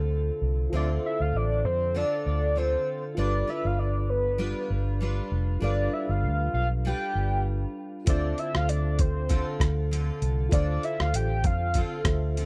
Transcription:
Already playing: D2 D3 C4 F4 A4 C5 E5
0.41 C2
0.70 D2 D3 F4 A4 C5
0.74 C4 F4 A4 D5 E5
1.06 E5
1.20 D2 F5
1.33 A1 D5
1.65 F2 C5
1.94 D3 C4 F4 A4 D5
2.26 D2 D5
2.56 D3 C4 F4 A4 C5
3.15 G1 G3 D4 F4 A4 B4
3.19 D5
3.47 D4 F4 B4 E5
3.65 G1 F5
3.79 D5
4.10 B4
4.38 G3 D4 F4 B4
4.70 G1
5.00 G3 D4 F4 B4
5.32 F1
5.60 G1 G3 D4 F4 A4 B4 D5
5.65 F5
5.93 E5
6.09 G1 F5
6.23 D2
6.54 B1 F5
6.85 G3 D4 F4 B4 G5
7.15 G1
8.05 D2 D3 C4 F4 A4 C5, kick, closed hi-hat
8.09 D5 E5
8.38 E5, closed hi-hat
8.55 D2 F5, cross-stick
8.69 D5, closed hi-hat
8.99 C5, kick, closed hi-hat
9.29 D3 C4 F4 A4, kick, closed hi-hat
9.60 D2, kick, cross-stick, closed hi-hat
9.91 D3 C4 F4 A4, closed hi-hat
10.22 C2, closed hi-hat
10.49 D2 D3 C4 F4 A4 C5 D5, kick, closed hi-hat
10.53 F4 A4 F5
10.83 E5, closed hi-hat
11.00 D2 F5, cross-stick
11.13 A1 G5, closed hi-hat
11.44 F2 F5, kick, closed hi-hat
11.74 D3 C4 F4 A4, kick, closed hi-hat
12.04 D2 F4 A4 C5 E5, kick, cross-stick, closed hi-hat
12.37 D3 C4 F4 A4, closed hi-hat

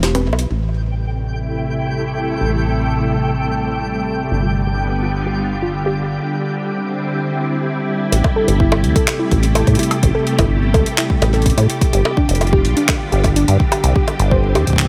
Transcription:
Already playing: E1
0.03 G4, snare, closed hi-hat
0.15 B4, closed hi-hat, high tom
0.27 B1
0.33 high bongo
0.39 closed hi-hat
0.50 A1 C3 G5
0.57 G3
0.63 A3
0.93 E4
1.56 A4
2.41 A1
4.31 G1 D3
4.43 F4
4.50 B3
4.67 G4
4.94 F4
5.03 F4
5.27 G4
5.62 F4
5.86 G4
6.39 C4
6.54 E4
8.12 A1 C3, closed hi-hat
8.24 kick, high bongo
8.36 A4
8.42 A3
8.48 G1, closed hi-hat
8.60 E4, kick
8.72 high bongo
8.84 D2, closed hi-hat
8.96 A4, kick, closed hi-hat
9.08 clap, closed hi-hat, high bongo
9.19 E4
9.31 A1, kick, closed hi-hat
9.43 closed hi-hat
9.55 A4, closed hi-hat, high bongo
9.67 A2, kick, closed hi-hat
9.75 E4, closed hi-hat
9.79 closed hi-hat
9.83 closed hi-hat
9.91 closed hi-hat, high bongo
10.03 A1, kick, closed hi-hat
10.15 A4
10.27 closed hi-hat
10.38 G1 E4, kick, closed hi-hat, high bongo
10.74 D2 A4, kick, closed hi-hat, high bongo
10.86 closed hi-hat
10.98 E4, clap, closed hi-hat
11.10 kick
11.22 A1, closed hi-hat, high bongo
11.34 A4, closed hi-hat
11.42 kick, closed hi-hat
11.46 closed hi-hat
11.50 closed hi-hat
11.57 A2 E4, closed hi-hat, high bongo
11.70 closed hi-hat
11.81 kick, closed hi-hat
11.93 G1 D3 G4, closed hi-hat
12.05 high bongo
12.10 F4
12.17 D4, kick
12.29 F1, closed hi-hat
12.35 B3, closed hi-hat
12.41 closed hi-hat, high bongo
12.47 closed hi-hat
12.53 G4, kick
12.64 B1, closed hi-hat
12.76 D4, closed hi-hat
12.89 kick, clap, closed hi-hat, high bongo
13.12 G1 G4, closed hi-hat
13.24 kick, closed hi-hat, high bongo
13.36 D4, closed hi-hat
13.48 G2, closed hi-hat
13.60 kick
13.72 G4, closed hi-hat, high bongo
13.84 C2, closed hi-hat
13.96 G4, kick
14.04 C4, closed hi-hat, high bongo
14.20 G1, closed hi-hat
14.29 E4 C5, kick
14.55 E2 G4, closed hi-hat, high bongo
14.67 kick, closed hi-hat
14.70 kick
14.73 kick
14.76 kick
14.79 kick, clap, closed hi-hat
14.82 kick
14.85 kick

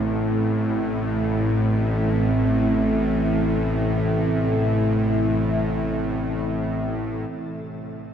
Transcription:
Already playing: A1 A2 C4 E4 A4 E5
7.29 A1 A2

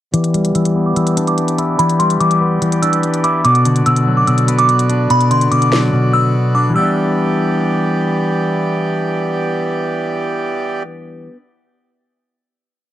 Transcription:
0.14 E3 B3 G4 D5 D6, closed hi-hat
0.24 closed hi-hat
0.34 G3, closed hi-hat
0.45 closed hi-hat
0.55 E3 E6, closed hi-hat
0.65 closed hi-hat
0.76 B3
0.86 D6
0.96 E3 E6, closed hi-hat
1.07 closed hi-hat
1.17 D4, closed hi-hat
1.27 D6, closed hi-hat
1.38 closed hi-hat
1.48 closed hi-hat
1.58 E4, closed hi-hat
1.79 E3 B5, closed hi-hat
1.90 closed hi-hat
1.99 G3 C6, closed hi-hat
2.10 closed hi-hat
2.20 E3 D6, closed hi-hat
2.31 closed hi-hat
2.41 B3
2.62 E3, closed hi-hat
2.72 closed hi-hat
2.82 D4 E6, closed hi-hat
2.93 closed hi-hat
3.03 closed hi-hat
3.14 closed hi-hat
3.24 E4 D6, closed hi-hat
3.44 B2 D3 F#4 D6, closed hi-hat
3.55 closed hi-hat
3.65 D3, closed hi-hat
3.76 closed hi-hat
3.86 B2 E6, closed hi-hat
3.96 closed hi-hat
4.07 F#3
4.17 D6
4.27 B2 E6, closed hi-hat
4.38 closed hi-hat
4.48 B3, closed hi-hat
4.59 D6, closed hi-hat
4.69 closed hi-hat
4.79 closed hi-hat
4.89 D4, closed hi-hat
5.10 B2 B5, closed hi-hat
5.21 closed hi-hat
5.31 D3 C6, closed hi-hat
5.41 closed hi-hat
5.51 B2 D6, closed hi-hat
5.62 closed hi-hat
5.72 F#3, finger snap, snare
5.93 B2
6.13 B3 E6
6.55 D4 D6
6.70 E3
6.74 E3 G3 B3 G4 D5 E6
6.78 B3 D4

